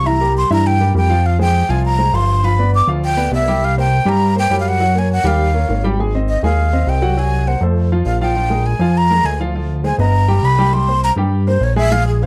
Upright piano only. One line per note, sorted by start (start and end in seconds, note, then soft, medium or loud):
0.06 0.18 E3 medium
0.06 0.18 E4 medium
0.06 0.18 E5 medium
0.21 0.45 G3 medium
0.21 0.45 G4 medium
0.21 0.45 A#4 medium
0.50 0.75 E3 medium
0.50 0.75 E4 medium
0.50 0.75 E5 medium
0.80 0.93 G3 medium
0.80 0.93 G4 medium
0.80 0.93 A#4 medium
0.95 1.07 G3 medium
0.95 1.07 G4 medium
0.95 1.07 A#4 medium
1.10 1.34 F3 medium
1.10 1.34 F4 medium
1.10 1.35 F5 medium
1.39 1.64 G#3 medium
1.39 1.64 G#4 medium
1.39 1.64 C5 medium
1.69 1.93 F3 medium
1.69 1.93 F4 medium
1.69 1.94 F5 medium
1.98 2.11 G#3 medium
1.98 2.11 G#4 medium
1.98 2.11 C5 medium
2.13 2.38 F3 medium
2.13 2.38 F4 medium
2.13 2.38 F5 medium
2.43 2.56 F3 medium
2.43 2.56 F4 medium
2.43 2.56 F5 medium
2.59 2.83 B3 medium
2.59 2.83 B4 medium
2.59 2.83 D5 medium
2.88 3.12 F3 medium
2.88 3.12 F4 medium
2.88 3.12 F5 medium
3.17 3.29 B3 medium
3.17 3.29 B4 medium
3.17 3.30 D5 medium
3.32 3.44 B3 medium
3.32 3.45 B4 medium
3.32 3.45 D5 medium
3.48 3.72 G3 medium
3.48 3.72 G4 medium
3.48 3.72 G5 medium
3.77 4.01 A#3 medium
3.77 4.02 A#4 medium
3.77 4.02 C5 medium
4.06 4.30 G3 medium
4.06 4.30 G4 medium
4.06 4.31 G5 medium
4.36 4.48 A#3 medium
4.36 4.48 A#4 medium
4.36 4.48 C5 medium
4.51 4.75 G3 medium
4.51 4.75 G4 medium
4.51 4.75 G5 medium
4.80 4.92 F#3 medium
4.80 4.93 F#4 medium
4.80 4.93 F#5 medium
4.95 5.19 A#3 medium
4.95 5.20 A#4 medium
4.95 5.20 C#5 medium
5.24 5.49 G3 medium
5.24 5.49 G4 medium
5.24 5.49 G5 medium
5.54 5.66 A#3 medium
5.54 5.66 A#4 medium
5.54 5.67 C#5 medium
5.68 5.81 A#3 medium
5.68 5.81 A#4 medium
5.68 5.81 C#5 medium
5.84 5.96 G3 medium
5.84 5.96 G4 medium
5.84 5.96 G5 medium
6.00 6.11 G#3 medium
6.00 6.12 G#4 medium
6.00 6.12 G#5 medium
6.15 6.39 C4 medium
6.15 6.39 C5 medium
6.15 6.39 D#5 medium
6.44 6.68 G#3 medium
6.44 6.68 G#4 medium
6.44 6.68 G#5 medium
6.73 6.97 C4 medium
6.73 6.97 C5 medium
6.73 6.98 D#5 medium
7.02 7.14 F#3 medium
7.02 7.14 F#4 loud
7.02 7.15 F#5 medium
7.17 7.42 F#3 medium
7.17 7.42 F#4 medium
7.17 7.42 F#5 medium
7.47 7.59 A#3 medium
7.47 7.59 A#4 medium
7.47 7.60 C5 medium
7.62 7.86 A3 medium
7.62 7.87 A4 medium
7.62 7.87 C5 medium
7.92 8.16 F3 medium
7.92 8.16 F4 medium
7.92 8.16 F5 medium
8.21 8.33 F3 medium
8.21 8.34 F4 medium
8.21 8.34 F5 medium
8.36 8.48 F3 medium
8.36 8.48 F4 medium
8.36 8.49 F5 medium
8.50 8.75 G#3 medium
8.50 8.75 G#4 medium
8.50 8.75 A#4 medium
8.81 9.05 F3 medium
8.81 9.05 F4 medium
8.81 9.05 F5 medium
9.11 9.35 G#3 medium
9.11 9.35 G#4 medium
9.11 9.35 A#4 medium
9.40 9.52 F3 medium
9.40 9.52 F4 medium
9.40 9.52 F5 medium
9.55 9.79 F3 medium
9.55 9.79 F4 medium
9.55 9.80 F5 medium
9.84 9.96 G#3 medium
9.84 9.96 G#4 medium
9.84 9.96 C5 medium
9.99 10.23 B3 medium
9.99 10.23 B4 medium
9.99 10.24 D#5 medium
10.28 10.53 G3 medium
10.28 10.53 G4 medium
10.28 10.53 G5 medium
10.59 10.70 G3 medium
10.59 10.71 G4 medium
10.59 10.71 G5 medium
10.73 10.85 G3 medium
10.73 10.85 G4 medium
10.73 10.86 G5 medium
10.88 11.12 A#3 medium
10.88 11.12 A#4 medium
10.88 11.13 C5 medium
11.17 11.41 G3 medium
11.17 11.42 G4 medium
11.17 11.42 G5 medium
11.47 11.71 A#3 medium
11.47 11.71 A#4 medium
11.47 11.71 C5 medium
11.76 11.88 G#3 medium
11.76 11.89 G#4 loud
11.76 11.89 G#5 medium
11.91 12.16 G#3 medium
11.91 12.15 G#4 medium
11.91 12.16 G#5 medium
12.22 12.26 C#4 medium
12.22 12.26 C#5 medium
12.22 12.26 F5 medium